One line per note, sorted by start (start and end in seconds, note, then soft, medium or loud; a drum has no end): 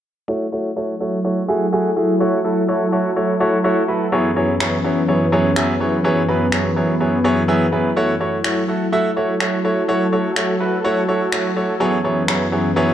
0.28 4.09 F#3 medium
0.28 0.45 A3 loud
0.28 0.45 E4 medium
0.28 4.09 E4 medium
0.28 0.45 F#4 medium
0.28 4.09 A4 medium
0.28 0.45 C#5 loud
0.52 0.69 A3 medium
0.52 0.69 E4 medium
0.52 0.69 F#4 medium
0.52 0.69 C#5 medium
0.76 0.93 A3 medium
0.76 0.93 E4 medium
0.76 0.93 F#4 medium
0.76 0.93 C#5 medium
1.00 1.17 A3 medium
1.00 1.17 E4 medium
1.00 1.17 F#4 medium
1.00 1.17 C#5 medium
1.24 1.41 A3 medium
1.24 1.41 E4 medium
1.24 1.41 F#4 medium
1.24 1.41 C#5 medium
1.48 1.65 A3 loud
1.48 1.65 E4 medium
1.48 1.65 F#4 medium
1.48 1.65 G#4 loud
1.72 1.89 A3 loud
1.72 1.89 E4 medium
1.72 1.89 F#4 loud
1.72 1.89 G#4 loud
1.96 2.13 A3 medium
1.96 2.13 E4 medium
1.96 2.13 F#4 medium
1.96 2.13 G#4 medium
2.20 2.37 A3 loud
2.20 2.37 E4 medium
2.20 2.37 F#4 medium
2.20 2.37 C#5 loud
2.44 2.61 A3 medium
2.44 2.61 E4 medium
2.44 2.61 F#4 medium
2.44 2.61 A4 medium
2.68 2.85 A3 medium
2.68 2.85 E4 medium
2.68 2.85 F#4 medium
2.68 2.85 C#5 medium
2.92 3.09 A3 medium
2.92 3.09 E4 medium
2.92 3.09 F#4 medium
2.92 3.09 C#5 medium
3.16 3.33 A3 medium
3.16 3.33 E4 medium
3.16 3.33 F#4 medium
3.16 3.33 C#5 medium
3.40 3.57 A3 loud
3.40 3.57 E4 loud
3.40 3.57 F#4 loud
3.40 3.57 C#5 loud
3.64 3.81 A3 loud
3.64 3.81 E4 loud
3.64 3.81 F#4 medium
3.64 3.81 C#5 loud
3.88 4.05 A3 medium
3.88 4.05 E4 medium
3.88 4.05 F#4 medium
3.88 4.05 B4 medium
4.12 7.93 F#2 medium
4.12 7.93 E3 medium
4.12 4.29 F#3 loud
4.12 4.29 B3 medium
4.12 6.03 C#4 medium
4.12 4.29 E4 medium
4.12 4.29 G#4 medium
4.12 7.93 B4 medium
4.12 4.29 C#5 loud
4.36 4.53 F#3 medium
4.36 4.53 B3 medium
4.36 4.53 E4 medium
4.36 4.53 G#4 medium
4.36 4.53 C#5 medium
4.60 4.77 F#3 medium
4.60 4.77 B3 medium
4.60 4.77 E4 medium
4.60 4.77 G#4 medium
4.60 4.77 C#5 medium
4.60 finger snap loud
4.84 5.01 F#3 medium
4.84 5.01 B3 medium
4.84 5.01 E4 medium
4.84 5.01 G#4 medium
4.84 5.01 C#5 medium
5.08 5.25 F#3 medium
5.08 5.25 B3 medium
5.08 5.25 E4 medium
5.08 5.25 G#4 medium
5.08 5.25 C#5 medium
5.32 5.49 F#3 loud
5.32 5.49 B3 medium
5.32 5.49 E4 medium
5.32 5.49 G#4 medium
5.32 5.49 C#5 loud
5.56 5.73 F#3 loud
5.56 5.73 B3 loud
5.56 5.73 E4 medium
5.56 5.73 G#4 loud
5.56 5.73 E5 loud
5.56 finger snap loud
5.80 5.97 F#3 medium
5.80 5.97 B3 medium
5.80 5.97 E4 medium
5.80 5.97 G#4 medium
5.80 5.97 C#5 medium
6.04 6.21 F#3 loud
6.04 6.21 B3 medium
6.04 7.95 B3 medium
6.04 6.21 E4 medium
6.04 6.21 G#4 loud
6.04 6.21 C#5 loud
6.28 6.45 F#3 medium
6.28 6.45 B3 medium
6.28 6.45 E4 medium
6.28 6.45 G#4 medium
6.28 6.45 B4 medium
6.52 6.69 F#3 medium
6.52 6.69 B3 medium
6.52 6.69 E4 medium
6.52 6.69 G#4 medium
6.52 6.69 C#5 medium
6.52 finger snap loud
6.76 6.93 F#3 medium
6.76 6.93 B3 medium
6.76 6.93 E4 medium
6.76 6.93 G#4 medium
6.76 6.93 C#5 medium
7.00 7.17 F#3 medium
7.00 7.17 B3 medium
7.00 7.17 E4 medium
7.00 7.17 G#4 medium
7.00 7.17 C#5 medium
7.24 7.41 F#3 loud
7.24 7.41 B3 loud
7.24 7.41 E4 loud
7.24 7.41 G#4 medium
7.24 7.41 C#5 loud
7.48 7.65 F#3 loud
7.48 7.65 B3 loud
7.48 7.65 E4 medium
7.48 7.65 G#4 loud
7.48 7.65 E5 loud
7.72 7.89 F#3 medium
7.72 7.89 B3 medium
7.72 7.89 E4 medium
7.72 7.89 G#4 medium
7.72 7.89 B4 medium
7.96 11.77 F#3 medium
7.96 8.13 A3 loud
7.96 9.87 E4 medium
7.96 8.13 E4 loud
7.96 8.13 F#4 medium
7.96 11.77 A4 medium
7.96 8.13 C#5 loud
8.20 8.37 A3 medium
8.20 8.37 E4 medium
8.20 8.37 F#4 medium
8.20 8.37 C#5 medium
8.44 8.61 A3 medium
8.44 8.61 E4 medium
8.44 8.61 F#4 medium
8.44 8.61 C#5 medium
8.44 finger snap loud
8.68 8.85 A3 medium
8.68 8.85 E4 medium
8.68 8.85 F#4 medium
8.68 8.85 A4 medium
8.92 9.09 A3 loud
8.92 9.09 E4 loud
8.92 9.09 F#4 medium
8.92 9.09 E5 loud
9.16 9.33 A3 medium
9.16 9.33 E4 medium
9.16 9.33 F#4 medium
9.16 9.33 C#5 medium
9.40 9.57 A3 medium
9.40 9.57 E4 medium
9.40 9.57 F#4 medium
9.40 9.57 C#5 medium
9.40 finger snap loud
9.64 9.81 A3 medium
9.64 9.81 E4 medium
9.64 9.81 F#4 medium
9.64 9.81 C#5 medium
9.88 10.05 A3 loud
9.88 10.05 E4 medium
9.88 10.05 F#4 medium
9.88 11.79 F#4 medium
9.88 10.05 C#5 loud
10.12 10.29 A3 medium
10.12 10.29 E4 medium
10.12 10.29 F#4 medium
10.12 10.29 C#5 medium
10.36 10.53 A3 medium
10.36 10.53 E4 medium
10.36 10.53 F#4 medium
10.36 10.53 C#5 medium
10.36 finger snap loud
10.60 10.77 A3 medium
10.60 10.77 E4 medium
10.60 10.77 F#4 medium
10.60 10.77 B4 medium
10.84 11.01 A3 loud
10.84 11.01 E4 medium
10.84 11.01 F#4 loud
10.84 11.01 C#5 loud
11.08 11.25 A3 medium
11.08 11.25 E4 medium
11.08 11.25 F#4 medium
11.08 11.25 C#5 medium
11.32 11.49 A3 medium
11.32 11.49 E4 medium
11.32 11.49 F#4 medium
11.32 11.49 C#5 medium
11.32 finger snap loud
11.56 11.73 A3 medium
11.56 11.73 E4 medium
11.56 11.73 F#4 medium
11.56 11.73 C#5 medium
11.80 12.94 F#2 medium
11.80 12.94 E3 medium
11.80 11.97 F#3 loud
11.80 11.97 B3 medium
11.80 12.94 C#4 medium
11.80 11.97 E4 medium
11.80 11.97 G#4 loud
11.80 12.94 B4 medium
11.80 11.97 C#5 loud
12.04 12.21 F#3 medium
12.04 12.21 B3 medium
12.04 12.21 E4 medium
12.04 12.21 G#4 medium
12.04 12.21 C#5 medium
12.28 12.45 F#3 medium
12.28 12.45 B3 medium
12.28 12.45 E4 medium
12.28 12.45 G#4 medium
12.28 12.45 C#5 medium
12.28 finger snap loud
12.52 12.69 F#3 medium
12.52 12.69 B3 medium
12.52 12.69 E4 medium
12.52 12.69 G#4 medium
12.52 12.69 C#5 medium
12.76 12.93 F#3 loud
12.76 12.93 B3 loud
12.76 12.93 E4 medium
12.76 12.93 G#4 medium
12.76 12.93 C#5 loud